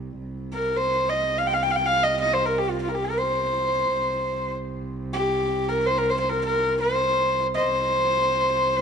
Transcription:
0.00 0.18 C2 medium
0.19 3.94 C2 medium
0.53 0.78 A#4 medium
0.76 1.11 C5 medium
1.09 1.40 D#5 medium
1.38 1.48 F5 medium
1.47 1.55 G5 medium
1.54 1.64 F5 medium
1.63 1.73 G5 medium
1.71 1.77 F5 medium
1.76 1.87 G5 medium
1.86 2.05 F5 loud
2.03 2.19 D#5 medium
2.21 2.35 D#5 medium
2.33 2.47 C5 medium
2.45 2.60 A#4 medium
2.58 2.72 G4 medium
2.70 2.81 F4 medium
2.82 2.90 F4 medium
2.89 2.96 A#4 soft
2.95 3.06 G4 medium
3.05 3.20 A#4 medium
3.18 4.54 C5 medium
3.94 7.67 C2 medium
5.13 5.70 G4 medium
5.69 5.88 A#4 medium
5.86 5.99 C5 medium
5.98 6.11 A#4 medium
6.10 6.19 C5 medium
6.20 6.31 C5 medium
6.29 6.44 A#4 medium
6.45 6.79 A#4 medium
6.80 7.47 C5 medium
7.54 8.78 C5 medium
7.54 7.59 D#5 medium
7.68 8.82 C2 medium
8.77 8.82 A#4 medium

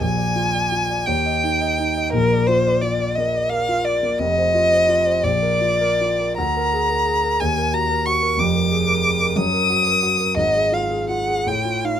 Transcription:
0.00 1.03 A#1 medium
0.00 1.07 G#5 medium
0.17 0.46 D5 soft
0.36 0.64 F4 soft
0.54 0.82 D5 soft
0.72 1.00 F4 soft
0.90 1.07 D5 soft
1.06 2.10 D#2 medium
1.06 2.12 G5 medium
1.26 1.53 D#5 soft
1.44 1.71 D#4 soft
1.61 1.88 D#5 medium
1.79 2.07 D#4 soft
1.96 2.13 D#5 soft
2.13 4.17 A#1 medium
2.13 4.17 A#2 medium
2.13 2.48 A#4 medium
2.32 2.59 D5 soft
2.47 2.76 F4 medium
2.47 2.83 C5 medium
2.66 2.93 D5 soft
2.81 3.10 F4 soft
2.81 3.17 D5 medium
2.99 3.27 D5 soft
3.15 3.45 A#3 soft
3.15 3.51 D#5 medium
3.34 3.62 D5 soft
3.49 3.79 A#4 medium
3.49 3.86 F5 medium
3.69 3.96 F4 soft
3.85 4.21 D5 medium
3.85 4.13 D5 soft
4.03 4.20 A#3 soft
4.19 5.20 F1 medium
4.19 5.21 F2 medium
4.19 5.25 D#5 loud
4.38 4.65 C5 soft
4.54 4.82 F4 medium
4.72 5.00 C5 medium
4.88 5.17 F4 soft
5.06 5.24 C5 soft
5.24 6.34 A#1 medium
5.24 6.36 D5 medium
5.42 5.73 A#4 soft
5.61 5.92 F4 soft
5.81 6.11 A#4 medium
6.01 6.31 F4 soft
6.20 6.38 A#4 soft
6.37 7.37 D2 medium
6.37 7.42 A#5 loud
6.57 6.83 A#4 medium
6.73 7.00 G#4 soft
6.90 7.17 A#4 soft
7.05 7.33 G#4 soft
7.23 7.40 A#4 soft
7.40 8.36 D#2 medium
7.40 7.75 G#5 medium
7.57 7.84 A#4 medium
7.74 8.00 F#4 soft
7.74 8.07 A#5 loud
7.90 8.16 A#4 medium
8.06 8.32 F#4 soft
8.06 8.41 C#6 medium
8.22 8.38 A#4 medium
8.37 9.33 F1 medium
8.37 9.34 F2 medium
8.37 9.38 D6 medium
8.55 8.81 A#4 soft
8.71 8.98 G#4 medium
8.87 9.14 A#4 soft
9.03 9.30 G#4 soft
9.21 9.37 A#4 soft
9.36 10.35 F#2 medium
9.36 10.37 D#6 loud
9.53 9.80 A#4 soft
9.70 9.97 F#4 soft
9.86 10.14 A#4 soft
10.03 10.31 F#4 soft
10.20 10.38 A#4 soft
10.36 11.43 G#1 medium
10.36 11.44 G#2 medium
10.36 10.75 D#5 medium
10.55 10.84 G#4 soft
10.72 11.02 F4 soft
10.72 11.09 F5 medium
10.91 11.21 G#4 soft
11.09 11.39 F4 soft
11.09 11.49 F#5 medium
11.28 11.47 G#4 soft
11.46 12.00 A2 medium
11.46 11.87 G5 medium
11.65 11.96 F4 soft
11.84 12.00 D#4 soft
11.84 12.00 F5 medium

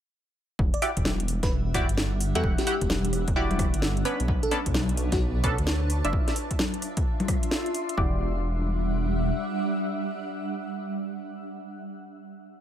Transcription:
0.59 0.72 E1 loud
0.59 7.96 D4 medium
0.59 kick loud
0.74 0.82 D5 medium
0.74 4.91 E5 medium
0.74 closed hi-hat medium
0.79 4.05 G3 medium
0.79 0.91 E4 medium
0.79 0.91 F#4 medium
0.79 0.91 G4 medium
0.79 0.91 D5 loud
0.79 open hi-hat loud
0.97 1.40 E1 medium
0.97 4.91 F#5 medium
0.97 kick medium
0.97 closed hi-hat medium
1.05 snare loud
1.05 high conga medium
1.20 closed hi-hat medium
1.28 open hi-hat loud
1.43 1.87 E1 medium
1.43 1.51 B4 medium
1.43 kick loud
1.43 snare medium
1.43 closed hi-hat medium
1.74 1.88 E4 loud
1.74 1.88 F#4 medium
1.74 1.88 G4 medium
1.74 1.88 D5 loud
1.74 kick loud
1.74 cross-stick medium
1.74 open hi-hat loud
1.89 2.33 G1 medium
1.89 closed hi-hat medium
1.97 snare loud
2.21 open hi-hat loud
2.35 2.43 E2 loud
2.35 2.65 E4 medium
2.35 2.65 F#4 medium
2.35 2.65 G4 medium
2.35 2.43 A4 medium
2.35 2.65 F#5 medium
2.35 closed hi-hat medium
2.44 2.57 E1 loud
2.44 kick loud
2.58 3.22 G4 medium
2.58 snare medium
2.58 closed hi-hat medium
2.67 2.75 E4 medium
2.67 2.75 F#4 medium
2.67 2.75 G4 medium
2.67 2.75 F#5 medium
2.67 open hi-hat loud
2.81 3.25 E1 medium
2.81 kick medium
2.81 closed hi-hat medium
2.90 snare loud
2.90 high conga medium
3.05 closed hi-hat medium
3.13 cross-stick soft
3.13 open hi-hat loud
3.28 3.71 E1 medium
3.28 kick loud
3.28 closed hi-hat medium
3.36 4.03 E4 loud
3.36 4.03 F#4 medium
3.36 4.03 G4 medium
3.36 4.03 D5 loud
3.51 closed hi-hat soft
3.51 high conga medium
3.59 kick loud
3.59 cross-stick medium
3.59 open hi-hat loud
3.74 4.04 G1 medium
3.74 closed hi-hat medium
3.82 snare loud
3.97 closed hi-hat soft
4.05 4.19 B3 medium
4.05 4.19 C#4 medium
4.05 4.19 D4 medium
4.05 4.19 B4 loud
4.05 open hi-hat loud
4.20 4.27 B1 medium
4.20 6.13 C#5 medium
4.20 6.88 A5 medium
4.20 closed hi-hat medium
4.25 4.41 B1 loud
4.25 6.13 B4 medium
4.25 kick loud
4.43 4.51 A4 loud
4.43 closed hi-hat medium
4.51 4.60 B3 medium
4.51 4.60 C#4 medium
4.51 4.60 D4 medium
4.51 4.60 A4 loud
4.51 open hi-hat loud
4.66 5.10 B1 medium
4.66 kick medium
4.66 closed hi-hat medium
4.74 snare loud
4.74 high conga medium
4.89 closed hi-hat medium
4.97 open hi-hat loud
5.12 5.56 B1 medium
5.12 5.20 F#4 medium
5.12 kick loud
5.12 snare medium
5.12 closed hi-hat medium
5.44 5.57 B3 loud
5.44 5.57 C#4 medium
5.44 5.57 D4 medium
5.44 5.57 A4 loud
5.44 kick loud
5.44 cross-stick medium
5.44 open hi-hat loud
5.58 6.02 D2 medium
5.58 closed hi-hat medium
5.67 snare loud
5.90 open hi-hat loud
6.05 6.12 F#1 medium
6.05 6.34 D4 medium
6.05 6.34 E4 medium
6.05 6.34 F4 medium
6.05 6.34 E5 medium
6.05 closed hi-hat medium
6.13 kick loud
6.28 snare medium
6.28 closed hi-hat medium
6.32 7.97 F4 medium
6.32 7.97 E5 medium
6.32 open hi-hat loud
6.51 kick medium
6.51 closed hi-hat medium
6.59 snare loud
6.59 high conga medium
6.74 closed hi-hat medium
6.82 cross-stick soft
6.82 open hi-hat loud
6.87 7.97 C6 medium
6.97 kick loud
6.97 closed hi-hat medium
7.20 closed hi-hat soft
7.20 high conga medium
7.28 kick loud
7.28 cross-stick medium
7.28 open hi-hat loud
7.43 closed hi-hat medium
7.51 snare loud
7.66 closed hi-hat soft
7.74 open hi-hat loud
7.89 closed hi-hat medium
7.98 9.32 E1 medium
7.98 11.18 D4 medium
7.98 11.18 E4 medium
7.98 11.18 F#4 medium
7.98 11.18 G4 medium
7.98 11.18 D5 loud
7.98 kick loud
8.06 11.26 G3 medium
8.14 11.34 E5 medium
8.19 11.39 F#5 medium

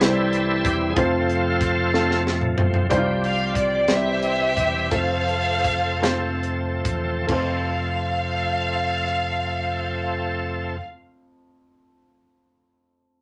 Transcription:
0.00 0.61 C2 medium
0.00 0.93 C3 medium
0.00 0.93 E3 soft
0.00 0.93 G3 soft
0.00 0.82 G3 medium
0.00 0.94 C4 medium
0.00 0.82 C4 soft
0.00 0.93 E4 medium
0.00 0.82 E4 medium
0.00 0.67 A4 medium
0.00 0.08 B4 soft
0.00 snare loud
0.00 closed hi-hat medium
0.09 0.86 C5 medium
0.33 closed hi-hat soft
0.65 0.95 E1 medium
0.65 0.77 G4 medium
0.65 kick medium
0.65 closed hi-hat medium
0.90 0.97 G#4 medium
0.96 2.54 F1 medium
0.96 2.56 F3 soft
0.96 2.57 A3 soft
0.96 1.78 A3 medium
0.96 1.78 C4 medium
0.96 2.22 C4 medium
0.96 2.22 F4 medium
0.96 1.78 F4 medium
0.96 2.22 A4 medium
0.96 1.79 C5 medium
0.96 kick loud
0.96 closed hi-hat medium
1.29 closed hi-hat soft
1.61 kick medium
1.61 closed hi-hat medium
1.94 2.75 A3 medium
1.94 2.75 C4 medium
1.94 2.75 F4 medium
1.94 2.75 A4 medium
1.94 snare medium
2.11 snare soft
2.27 snare medium
2.41 mid tom medium
2.57 2.88 B1 medium
2.57 2.87 F3 soft
2.57 2.87 A3 soft
2.57 2.87 C4 soft
2.57 floor tom medium
2.74 floor tom medium
2.89 3.84 C2 medium
2.89 3.85 C3 medium
2.89 3.87 F3 medium
2.89 4.89 G3 medium
2.89 3.73 G3 medium
2.89 7.24 C4 medium
2.89 3.73 C4 medium
2.89 2.97 E4 medium
2.89 3.87 G4 medium
2.89 3.73 C5 medium
2.89 kick medium
2.89 closed hi-hat medium
2.98 3.76 F4 medium
3.24 3.54 F5 medium
3.24 closed hi-hat soft
3.55 3.90 D5 medium
3.55 kick medium
3.55 closed hi-hat medium
3.88 4.53 C2 medium
3.88 4.88 C3 medium
3.88 4.91 E3 medium
3.88 4.75 G3 medium
3.88 4.75 C4 soft
3.88 4.75 E4 medium
3.88 4.91 G4 medium
3.88 4.89 G4 medium
3.88 4.75 C5 medium
3.88 4.89 C5 medium
3.88 4.92 E5 medium
3.88 snare medium
3.88 closed hi-hat medium
4.22 closed hi-hat soft
4.57 4.89 E1 medium
4.57 kick medium
4.57 closed hi-hat medium
4.91 6.81 F1 medium
4.91 7.27 F3 medium
4.91 5.84 A3 medium
4.91 7.26 A3 medium
4.91 5.85 C4 medium
4.91 5.85 F4 medium
4.91 7.26 A4 medium
4.91 6.40 A4 medium
4.91 5.85 C5 medium
4.91 6.40 C5 medium
4.91 6.44 F5 loud
4.91 kick medium
4.91 closed hi-hat medium
5.28 closed hi-hat soft
5.65 kick medium
5.65 closed hi-hat medium
6.02 7.07 A3 medium
6.02 7.07 C4 medium
6.02 7.07 F4 medium
6.02 7.07 C5 medium
6.02 snare loud
6.02 closed hi-hat medium
6.43 closed hi-hat soft
6.85 7.25 E1 medium
6.85 kick medium
6.85 closed hi-hat medium
7.27 10.78 F1 medium
7.27 10.78 F2 medium
7.27 10.77 F3 medium
7.27 10.76 A3 medium
7.27 10.76 C4 soft
7.27 10.78 C4 medium
7.27 10.79 F4 medium
7.27 10.77 A4 medium
7.27 10.79 F5 medium
7.27 kick medium
7.27 crash medium
7.32 10.81 C5 medium
9.07 cross-stick soft

